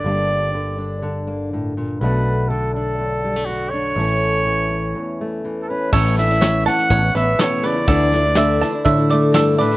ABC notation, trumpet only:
X:1
M:4/4
L:1/16
Q:1/4=123
K:Amix
V:1 name="Trumpet"
d8- d2 z6 | B4 A2 A6 F2 c2- | c12 z3/2 A/2 B2 | c2 e4 f4 e2 c2 d2- |
d8- d2 z4 B2 |]